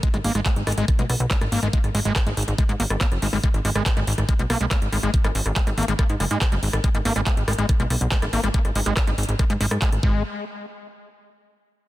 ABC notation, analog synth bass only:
X:1
M:4/4
L:1/16
Q:1/4=141
K:G#m
V:1 name="Analog synth bass" clef=bass
z G,,, G,,, G,,, z G,,, G,,, G,,, z B,,, B,,, B,,, z G,,, G,,, G,,, | z G,,, G,,, G,,, z G,,, G,,, G,,, z G,, G,,, G,,, z F,,, G,,, G,,, | z G,,, G,,, G,,, z G,,, G,,, G,,, z B,,, B,,, B,,, z G,,, G,,, G,,, | z G,,, G,,, G,,, z G,,, G,,, G,,, z G,, F,,, G,, z F,,, G,,, G,,, |
z G,,, G,,, G,,, z G,,, G,,, G,,, z B,,, B,,, B,,, z G,,, G,,, G,,, | z G,,, G,,, G,,, z G,,, G,,, G,,, z G,, G,,, G,, z G,,, G,,,2 | z16 |]